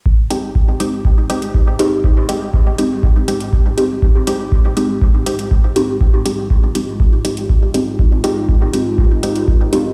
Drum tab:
HH |--x---x---xx--x-|--x---x---xx--x-|--x---x---xx--x-|--x---x---xx--x-|
BD |o---o---o---o---|o---o---o---o---|o---o---o---o---|o---o---o---o---|

HH |--x---x---xx--x-|
BD |o---o---o---o---|